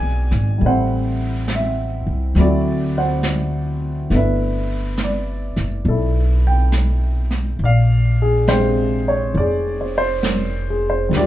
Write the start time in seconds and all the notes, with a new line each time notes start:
Already playing: F#3 G#3 B3 D4 G#4 D5 G#5
0.02 B1
0.31 G#1, snare
0.58 A1 G3 A3, brush sweep
0.65 C4 E4 C5 F#5
1.48 snare, hi-hat pedal
1.55 E5
2.07 C2
2.35 D2 F#3 A3 C4 E4, brush sweep, snare
2.41 F#4 D5
2.98 C5 F#5
3.23 snare, hi-hat pedal
4.10 G1 A3 B3, brush sweep, snare
4.14 D4 E4 B4 E5
4.98 snare, hi-hat pedal
5.04 D5
5.56 F#1, snare
5.85 B1 A4, brush sweep
5.90 E4
6.47 G5
6.72 snare, hi-hat pedal
7.31 snare
7.59 A#1, brush sweep
7.64 D5 F5
8.22 G#4
8.47 C3 G#3 D4 C5 G5, snare, hi-hat pedal
9.08 C#5
9.34 F1 D5, brush sweep
9.40 G#4
9.81 C5
9.98 C5
10.23 A#4, snare, hi-hat pedal
10.70 G#4
10.90 C5
11.09 D#2 G3 A#4, brush sweep, snare
11.15 D4 G4 D5
11.20 F4